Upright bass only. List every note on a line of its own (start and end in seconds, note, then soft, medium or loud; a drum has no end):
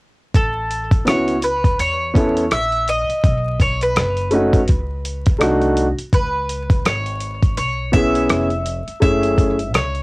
0.35 1.03 A1 medium
1.07 1.76 C#2 medium
1.79 2.48 E2 medium
2.51 3.06 A#1 medium
3.09 muted upright bass stroke soft
3.24 3.97 B1 medium
3.96 4.65 F#1 medium
4.69 5.37 C#2 medium
5.41 5.95 C2 medium
5.98 muted upright bass stroke soft
6.13 6.82 C#2 medium
6.85 7.54 G#1 medium
7.58 8.26 B1 medium
8.30 8.84 F1 medium
8.87 muted upright bass stroke soft
9.02 9.75 F#1 medium
9.75 10.03 C#2 medium